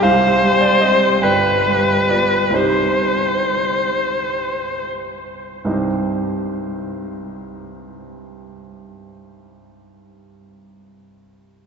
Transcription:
0.03 grand piano C2 F5, viola C5
0.42 grand piano G3
0.61 grand piano D5
0.81 grand piano C4 G4 D#5
1.22 grand piano G1 B4 D5 G5, viola B4
1.67 grand piano G3
2.09 grand piano B3 F4 D5
2.50 grand piano C2 G3 C4 C5
2.55 grand piano D#4 G4, viola C5
5.65 grand piano C2 G2 G3 C4 D#4 G4

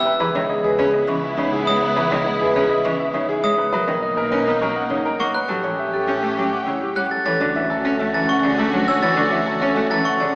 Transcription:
0.05 grand piano B4
0.20 double bass section C#2, cello E3, string section B3 E4, vibraphone G#4, grand piano B4
0.35 cello D#3, grand piano C#5
0.49 vibraphone G#4, grand piano D#5
0.64 grand piano G#4, vibraphone B4
0.79 cello C#4, vibraphone G#4, grand piano B4
0.94 grand piano D#5
1.08 cello E3, vibraphone C#4
1.24 grand piano E5
1.37 cello C#3, vibraphone D#4, grand piano C#5
1.53 grand piano G#4
1.67 cello G#3, vibraphone C#5, grand piano E5, glockenspiel D#6
1.83 grand piano B4
1.96 cello E3, vibraphone G#4, grand piano B4
2.11 cello D#3, grand piano C#5
2.26 vibraphone G#4, grand piano D#5
2.41 grand piano G#4, vibraphone B4
2.55 cello C#4, vibraphone G#4, grand piano B4
2.70 grand piano D#5
2.85 cello E3, vibraphone C#4
2.99 grand piano E5
3.14 cello C#3, vibraphone D#4, grand piano C#5
3.29 grand piano G#4
3.43 cello G#3, vibraphone C#5, grand piano E5, glockenspiel D#6
3.58 grand piano B4
3.73 double bass section B1, cello F#3, string section A#3 D#4, vibraphone A#4, grand piano B4
3.87 cello D#3, grand piano C#5
4.02 vibraphone A#4, grand piano D#5
4.17 grand piano A#4, vibraphone B4
4.32 cello C#4, vibraphone A#4, grand piano B4
4.47 cello B3, grand piano D#5
4.61 cello F#3, vibraphone C#4, grand piano A#4
4.76 grand piano F#5
4.90 cello C#3, vibraphone D#4, grand piano C#5
5.05 grand piano A#4
5.20 cello A#3, vibraphone C#5, grand piano F#5, glockenspiel C#6
5.34 grand piano B4, glockenspiel F#6
5.48 double bass section A2, cello F#3, string section C#4 G4, vibraphone G4, grand piano A4
5.64 cello E3, grand piano C#5
5.79 vibraphone G4, grand piano E5
5.93 grand piano G4, vibraphone A4
6.07 cello C#4, vibraphone G4, grand piano A4
6.22 cello A3, grand piano E5
6.37 cello F#3, vibraphone C#4, grand piano G4
6.53 grand piano F#5
6.66 cello C#3, vibraphone E4, grand piano C#5
6.82 grand piano G4
6.96 cello G3, vibraphone C#5, grand piano F#5, glockenspiel F#6
7.11 grand piano A4, glockenspiel A6
7.26 double bass section D2, cello E3, string section C#4 F#4, vibraphone A4, grand piano C#5, glockenspiel A6
7.40 cello D3, vibraphone F#4, grand piano D5
7.55 cello E3, grand piano E5
7.70 vibraphone F#4, grand piano A4
7.85 cello C#4, vibraphone A4, grand piano C#5
7.99 cello A3, vibraphone F#4, grand piano E5
8.14 cello E3, grand piano A4, glockenspiel A6
8.29 vibraphone C#4, grand piano F#5, glockenspiel C#6
8.43 cello C#3, vibraphone C#5, grand piano D5
8.58 cello A3, vibraphone D4, grand piano A4
8.73 cello F#3, grand piano F#5
8.88 vibraphone C#5, grand piano C#5, glockenspiel E6
9.02 cello E3, vibraphone A4, grand piano C#5, glockenspiel A6
9.17 cello D3, vibraphone F#4, grand piano D5
9.32 cello E3, grand piano E5
9.46 vibraphone F#4, grand piano A4
9.61 cello C#4, vibraphone A4, grand piano C#5
9.75 cello A3, vibraphone F#4, grand piano E5
9.90 cello E3, grand piano A4, glockenspiel A6
10.05 vibraphone C#4, grand piano F#5, glockenspiel C#6
10.20 cello C#3, vibraphone C#5, grand piano D5

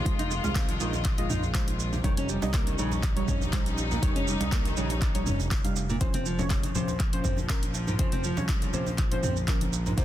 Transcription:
Already playing: string section D#3 G#3 F4
0.05 analog synth bass F1, nylon-string guitar F3, synth stab G#3 F4 D#5, kick, closed hi-hat, djembe bass, shaker
0.19 nylon-string guitar D#4, closed hi-hat, djembe tone, shaker
0.31 nylon-string guitar G#3, shaker
0.44 analog synth bass C2, synth stab G#3 F4 F5, djembe slap, djembe tone, shaker
0.55 nylon-string guitar C4, kick, clap, closed hi-hat, shaker
0.69 nylon-string guitar F3, closed hi-hat, djembe tone, shaker
0.80 analog synth bass A#1, nylon-string guitar D#3, synth stab G#3 F4 D#5, shaker
0.93 djembe slap, djembe tone, shaker
1.05 kick, clap, closed hi-hat, shaker
1.18 synth stab G#3 F4 D#5, closed hi-hat, djembe tone
1.30 nylon-string guitar D#4, mid tom, djembe bass, shaker
1.42 djembe tone, shaker
1.55 synth stab G#3 F4 C5, kick, clap, closed hi-hat, shaker
1.67 closed hi-hat, djembe tone, shaker
1.80 djembe slap, shaker
1.93 nylon-string guitar C3, djembe tone, shaker
2.04 analog synth bass F1, nylon-string guitar D#3, synth stab G3 D#4 C#5, string section G3 C#4 D#4, kick, closed hi-hat, djembe bass, shaker
2.17 nylon-string guitar C#4, closed hi-hat, djembe tone, shaker
2.29 nylon-string guitar G3, shaker
2.42 analog synth bass C2, synth stab G3 D#4 D#5, djembe slap, djembe tone, shaker
2.54 nylon-string guitar A#3, kick, clap, closed hi-hat, shaker
2.67 nylon-string guitar D#3, closed hi-hat, djembe tone, shaker
2.78 analog synth bass A#1, nylon-string guitar C#3, synth stab G3 D#4 C#5, shaker
2.91 djembe slap, djembe tone, shaker
3.03 kick, clap, closed hi-hat, shaker
3.16 synth stab G3 D#4 C#5, closed hi-hat, djembe tone
3.28 nylon-string guitar C#4, kick, mid tom, djembe slap, shaker
3.41 djembe tone, shaker
3.53 synth stab G3 D#4 C5, kick, clap, closed hi-hat, shaker
3.66 closed hi-hat, djembe tone, shaker
3.78 djembe slap, shaker
3.91 nylon-string guitar A#2, djembe tone, shaker
4.02 analog synth bass F1, nylon-string guitar D#3, synth stab G3 D#4 C#5, kick, closed hi-hat, djembe bass, shaker
4.16 nylon-string guitar C#4, closed hi-hat, djembe tone, shaker
4.27 nylon-string guitar G3, shaker
4.40 analog synth bass C2, synth stab G3 D#4 D#5, closed hi-hat, djembe slap, djembe tone, shaker
4.52 nylon-string guitar A#3, kick, clap, closed hi-hat, shaker
4.65 nylon-string guitar D#3, closed hi-hat, djembe tone, shaker
4.77 analog synth bass A#1, nylon-string guitar C#3, synth stab G3 D#4 C#5, shaker
4.90 closed hi-hat, djembe slap, djembe tone, shaker
5.02 kick, clap, closed hi-hat, shaker
5.15 synth stab G3 D#4 C#5, closed hi-hat, djembe tone, shaker
5.26 analog synth bass F1, nylon-string guitar C#4, mid tom, djembe bass, shaker
5.40 analog synth bass F1, djembe tone, shaker
5.51 analog synth bass F1, kick, clap, closed hi-hat, shaker
5.64 synth stab G3 D#4 F5, closed hi-hat, djembe tone, shaker
5.76 djembe slap, shaker
5.89 nylon-string guitar A#2, djembe tone, shaker
6.01 analog synth bass F1, nylon-string guitar C#3, synth stab F3 C#4 C5, string section F3, kick, closed hi-hat, djembe bass, shaker
6.13 nylon-string guitar C4, closed hi-hat, djembe tone, high conga, shaker
6.26 nylon-string guitar F3, shaker
6.39 synth stab F3 C#4 C#5, djembe slap, djembe tone, low conga, shaker
6.50 nylon-string guitar G#3, kick, clap, closed hi-hat, high conga, shaker
6.63 nylon-string guitar C#3, closed hi-hat, djembe tone, shaker
6.75 analog synth bass A#1, nylon-string guitar C3, synth stab F3 C#4 C5, high conga, low conga, shaker
6.88 djembe slap, djembe tone, shaker
7.00 kick, clap, closed hi-hat, high conga, shaker
7.13 synth stab F3 C#4 C5, closed hi-hat, djembe tone
7.24 nylon-string guitar C4, kick, mid tom, djembe slap, shaker
7.37 djembe tone, high conga, low conga, shaker
7.49 synth stab F3 C#4 A#4, kick, clap, closed hi-hat, shaker
7.63 closed hi-hat, djembe tone, shaker
7.74 djembe slap, shaker
7.87 nylon-string guitar G#2, djembe tone, shaker
7.99 analog synth bass F1, nylon-string guitar C#3, synth stab F3 C#4 C5, kick, closed hi-hat, djembe bass, shaker
8.12 nylon-string guitar C4, closed hi-hat, djembe tone, high conga, shaker
8.24 nylon-string guitar F3, shaker
8.37 analog synth bass C2, synth stab F3 C#4 C#5, djembe slap, djembe tone, low conga, shaker
8.49 nylon-string guitar G#3, kick, clap, closed hi-hat, high conga, shaker
8.61 nylon-string guitar C#3, closed hi-hat, djembe tone, shaker
8.73 analog synth bass A#1, nylon-string guitar C3, synth stab F3 C#4 C5, high conga, low conga, shaker
8.86 djembe slap, djembe tone, shaker
8.98 kick, clap, closed hi-hat, high conga, shaker
9.11 synth stab F3 C#4 C5, closed hi-hat, djembe tone, low conga
9.23 nylon-string guitar C4, mid tom, high conga, djembe bass, shaker
9.36 djembe tone, shaker
9.48 synth stab F3 C#4 A#4, kick, clap, closed hi-hat, shaker
9.61 closed hi-hat, djembe tone, high conga, shaker
9.73 djembe slap, shaker
9.86 nylon-string guitar G#2, djembe tone, shaker
9.97 analog synth bass F1, string section C3 A#3 D#4, nylon-string guitar C3, synth stab A#3 D#4 C5, kick, closed hi-hat, djembe bass, shaker

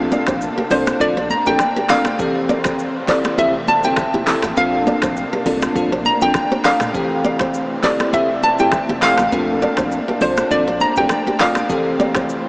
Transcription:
Already playing: sub bass A#1, string section C3 A3 A#3 D4, fm electric piano C4 D4 F4 A4, synth pluck F5
0.12 nylon-string guitar A#4 D5, high conga, shaker
0.27 sub bass A#1, nylon-string guitar A4 C5, finger snap, kick, cross-stick, shaker
0.41 shaker
0.58 nylon-string guitar G4 A#4
0.70 sub bass C2, fm electric piano C4 D4 F4 A4, nylon-string guitar A#4 D5, synth pluck C5, kick, open hi-hat, low conga, shaker
0.87 finger snap, cross-stick, high conga, shaker
1.00 sub bass A#1, fm electric piano C4 D4 F4 A4, synth pluck D5, kick, shaker
1.17 nylon-string guitar A4 C5
1.30 synth pluck A#5, high conga, shaker
1.46 sub bass A#1, fm electric piano C4 D4 F4 A4, nylon-string guitar G4 A#4, synth pluck G5, shaker
1.59 finger snap, cross-stick, low conga, shaker
1.76 nylon-string guitar G4 A#4, high conga
1.89 sub bass E1, fm electric piano C4 D4 F4 A4, nylon-string guitar A#4 D5, synth pluck F5, finger snap, cross-stick, clap, open hi-hat, low conga, shaker
2.05 finger snap, cross-stick, high conga, shaker
2.19 sub bass F1, fm electric piano E3 C4 G4 A4, string section E3 C4, kick, shaker
2.49 nylon-string guitar A#4 D5, high conga, shaker
2.64 sub bass F1, nylon-string guitar A4 C5, finger snap, kick, cross-stick, shaker
2.79 shaker
3.08 sub bass E1, fm electric piano C4 E4 G4 A4, nylon-string guitar A4 C5, synth pluck D5, kick, clap, open hi-hat, low conga, shaker
3.24 finger snap, cross-stick, high conga, shaker
3.38 sub bass F1, fm electric piano C4 E4 G4 A4, nylon-string guitar F4 A4, synth pluck E5, kick, shaker
3.68 nylon-string guitar F4 A4, synth pluck A5, high conga, shaker
3.84 sub bass G1, fm electric piano C4 E4 G4 A4, nylon-string guitar E4 G4, synth pluck G5, shaker
3.96 finger snap, kick, cross-stick, low conga, shaker
4.14 sub bass F1, nylon-string guitar E4 G4, high conga
4.27 fm electric piano C4 E4 G4 A4, finger snap, cross-stick, clap, open hi-hat, low conga, shaker
4.42 sub bass A1, nylon-string guitar F4 A4, finger snap, cross-stick, high conga, shaker
4.56 sub bass A#1, string section A3 A#3 D4, fm electric piano C4 D4 F4 A4, nylon-string guitar F4 A#4, synth pluck F5, shaker
4.87 nylon-string guitar A#4 D5, high conga, shaker
5.02 sub bass A#1, nylon-string guitar A4 C5, finger snap, kick, cross-stick, shaker
5.16 shaker
5.33 nylon-string guitar G4 A#4
5.46 sub bass C2, fm electric piano C4 D4 F4 A4, nylon-string guitar F4 A4, kick, open hi-hat, low conga, shaker
5.62 finger snap, cross-stick, high conga, shaker
5.75 sub bass A#1, fm electric piano C4 D4 F4 A4, kick, low conga, shaker
5.92 nylon-string guitar A4 C5
6.05 synth pluck A#5, high conga, shaker
6.21 sub bass A#1, fm electric piano C4 D4 F4 A4, nylon-string guitar F4 A4, synth pluck G5, high conga, shaker
6.34 finger snap, kick, cross-stick, low conga, shaker
6.51 nylon-string guitar A4 C5, high conga
6.64 sub bass E1, fm electric piano C4 D4 F4 A4, nylon-string guitar A#4 D5, synth pluck F5, finger snap, cross-stick, clap, open hi-hat, low conga, shaker
6.80 finger snap, cross-stick, mid tom, high conga, shaker
6.94 sub bass F1, fm electric piano E3 C4 G4 A4, string section E3 C4, kick, shaker
7.24 nylon-string guitar A#4 D5, high conga, shaker
7.39 sub bass F1, nylon-string guitar A4 C5, finger snap, kick, cross-stick, shaker
7.54 shaker
7.83 sub bass E1, fm electric piano C4 E4 G4 A4, nylon-string guitar A4 C5, synth pluck D5, kick, clap, open hi-hat, low conga, shaker
7.99 finger snap, cross-stick, high conga, shaker
8.13 sub bass F1, fm electric piano C4 E4 G4 A4, nylon-string guitar F4 A4, synth pluck E5, kick, shaker
8.43 nylon-string guitar F4 A4, synth pluck A5, high conga, shaker
8.59 sub bass G1, fm electric piano C4 E4 G4 A4, nylon-string guitar E4 G4, synth pluck G5, shaker
8.72 finger snap, kick, cross-stick, low conga, shaker
8.89 sub bass F1, nylon-string guitar E4 G4, high conga
9.02 fm electric piano C4 E4 G4 A4, synth pluck F5, finger snap, cross-stick, clap, open hi-hat, low conga, shaker
9.18 sub bass A1, nylon-string guitar F4 A4, finger snap, cross-stick, high conga, shaker
9.32 sub bass A#1, string section A#3 D4, fm electric piano C4 D4 F4 A4, nylon-string guitar F4 A#4, shaker
9.62 nylon-string guitar A#4 D5, high conga, shaker
9.77 sub bass A#1, nylon-string guitar A4 C5, finger snap, kick, cross-stick, shaker
9.92 shaker
10.08 nylon-string guitar G4 A#4
10.21 sub bass C2, fm electric piano C4 D4 F4 A4, nylon-string guitar A#4 D5, synth pluck C5, kick, open hi-hat, low conga, shaker
10.37 finger snap, cross-stick, high conga, shaker
10.51 sub bass A#1, fm electric piano C4 D4 F4 A4, synth pluck D5, kick, shaker
10.68 nylon-string guitar A4 C5
10.80 synth pluck A#5, high conga, shaker
10.96 sub bass A#1, fm electric piano C4 D4 F4 A4, nylon-string guitar G4 A#4, synth pluck G5, shaker
11.09 finger snap, cross-stick, low conga, shaker
11.27 nylon-string guitar G4 A#4, high conga
11.39 sub bass E1, fm electric piano C4 D4 F4 A4, nylon-string guitar A#4 D5, synth pluck F5, finger snap, cross-stick, clap, open hi-hat, low conga, shaker
11.55 finger snap, cross-stick, high conga, shaker
11.69 sub bass F1, fm electric piano E3 C4 G4 A4, string section E3 C4, kick, shaker
12.00 nylon-string guitar A#4 D5, high conga, shaker
12.15 sub bass F1, nylon-string guitar A4 C5, finger snap, kick, cross-stick, shaker
12.29 shaker

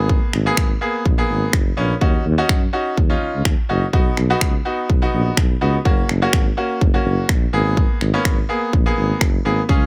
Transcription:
Already playing: tuba G#1, grand piano A#3 B3 G#4
0.09 kick
0.33 tuba G#1, finger snap
0.46 grand piano A#3 B3 G#4
0.57 tuba G#1, finger snap, kick
0.81 grand piano A#3 B3 G#4
1.06 tuba A#1, kick
1.18 grand piano A#3 B3 G#4
1.29 tuba G#1
1.53 tuba F#1, finger snap, kick
1.77 tuba A#1, grand piano A#3 B3 C#4
2.01 tuba D#2, grand piano C#4 D#4 F#4, kick
2.25 tuba D#2
2.38 grand piano C#4 D#4 F#4
2.49 tuba F#2, finger snap, kick
2.73 grand piano C#4 D#4 F#4
2.97 tuba D#2, kick
3.10 grand piano C#4 D#4 F4
3.21 tuba C#2
3.34 tuba C#2
3.45 tuba D#2, finger snap, kick
3.69 tuba F#1, grand piano C#4 D#4 F#4
3.93 tuba B1, grand piano B3 D#4 F#4, kick
4.17 tuba B1, finger snap
4.30 grand piano B3 D#4 F#4
4.41 tuba C#2, finger snap, kick
4.65 grand piano B3 D#4 F#4
4.90 tuba B1, kick
5.02 grand piano B3 D#4 F#4
5.13 tuba A#1
5.37 tuba B1, finger snap, kick
5.61 tuba C#2, grand piano B3 D#4 F#4
5.85 tuba F#1, grand piano A#3 C#4 F#4, kick
6.09 tuba F#1, finger snap
6.22 grand piano A#3 C#4 F#4
6.33 tuba G#1, finger snap, kick
6.57 grand piano A#3 C#4 F#4
6.81 tuba F#1, kick
6.94 grand piano A#3 C#4 F#4
7.05 tuba F#1
7.29 tuba A#1, finger snap, kick
7.53 tuba G#1, grand piano A#3 B3 G#4
7.77 kick
8.01 tuba G#1, finger snap
8.14 grand piano A#3 B3 C#4
8.25 tuba G#1, finger snap, kick
8.49 grand piano A#3 B3 G#4
8.73 tuba A#1, kick
8.86 grand piano A#3 B3 G#4
8.97 tuba G#1
9.21 tuba F#1, finger snap, kick
9.45 tuba G#1, grand piano A#3 B3 G#4
9.69 tuba C#2, grand piano C#4 F4 G#4, kick

